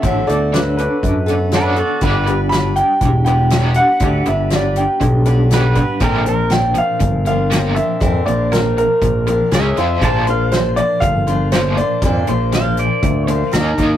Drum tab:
HH |xxxxxxxx|xxxxxxxx|xxxxxxxx|xxxxxxxx|
SD |--o---o-|--o---o-|--o---o-|--o---o-|
BD |o---o---|o---o---|o---o--o|o---o---|

HH |xxxxxxxx|xxxxxxxx|xxxxxxxx|
SD |--o---o-|--o---o-|--o---o-|
BD |o---o---|o---o---|o---o--o|